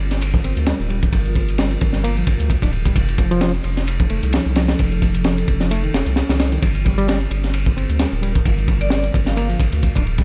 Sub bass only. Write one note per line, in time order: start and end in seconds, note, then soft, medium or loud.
0.00 0.40 G1 medium
0.44 0.53 G1 medium
0.56 0.73 D2 medium
0.80 1.08 D1 loud
1.12 1.77 G1 loud
1.81 2.23 G1 medium
2.27 2.36 G1 medium
2.40 2.56 D2 loud
2.62 2.91 D1 loud
2.96 3.60 F1 loud
3.64 4.06 F1 medium
4.10 4.20 F1 medium
4.23 4.39 C2 loud
4.46 4.75 C2 loud
4.79 5.44 F1 loud
5.48 5.89 F1 medium
5.94 6.03 F1 medium
6.06 6.22 C2 loud
6.29 6.58 C2 medium
6.62 7.27 G1 loud
7.31 7.72 G1 medium
7.76 7.86 G1 medium
7.89 8.06 D2 loud
8.12 8.41 D1 loud
8.45 9.10 G1 loud
9.14 9.56 G1 medium
9.60 9.69 G1 medium
9.73 9.89 D2 loud
9.96 10.24 D1 loud